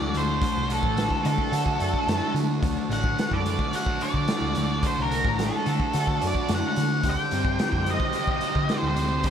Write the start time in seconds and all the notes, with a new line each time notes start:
Already playing: D3 F#3 A3 D4 F#4 D5 A5
0.01 D2
0.14 D2 A3 C5, closed hi-hat
0.42 D3, kick, closed hi-hat
0.57 C2
0.70 A3 A4, closed hi-hat
0.83 A1, kick
0.96 D3, snare, closed hi-hat
1.10 kick
1.24 D3 A3 A4, closed hi-hat
1.38 kick
1.51 D3 F#4, closed hi-hat
1.66 kick
1.79 F#2 D4, closed hi-hat
1.94 kick
2.07 F#2 D3, snare, closed hi-hat
2.34 D3 A3, closed hi-hat
2.63 D2 D3, kick, closed hi-hat
2.89 A1 A3 F#5, closed hi-hat
3.04 kick
3.19 D3, snare, closed hi-hat
3.31 F#2 D5, kick
3.46 A3, closed hi-hat
3.59 kick
3.73 F#4 F#5, closed hi-hat
3.86 kick
4.01 D4 D5, closed hi-hat
4.14 D3, kick
4.28 D3, snare, closed hi-hat
4.41 D2
4.55 D2 A3, closed hi-hat
4.83 D3 C5, kick, closed hi-hat
4.99 C2 A#4
5.10 A3, closed hi-hat
5.25 A1, kick, snare
5.38 D3, snare, closed hi-hat
5.45 A4
5.66 D3 A3, closed hi-hat
5.80 kick
5.93 D3 F#4, closed hi-hat
6.07 kick
6.21 F#2 D4, closed hi-hat
6.27 D5
6.35 kick
6.48 F#2 D3, snare, closed hi-hat
6.54 F#5
6.69 F#5
6.76 D3 A3, closed hi-hat
7.03 D2 D3 G3 C4 G4, kick, closed hi-hat
7.10 G5
7.31 G2 C4, closed hi-hat
7.45 kick
7.59 D3, snare, closed hi-hat
7.72 F#2, kick
7.86 C4, closed hi-hat
7.91 D#5
8.00 kick
8.13 G4, closed hi-hat
8.27 kick
8.33 D#5
8.41 D#4, closed hi-hat
8.55 D3, kick
8.69 D3, snare, closed hi-hat
8.74 C5
8.83 D2
8.88 C5
8.96 D2 C4, closed hi-hat
9.23 D3, kick, closed hi-hat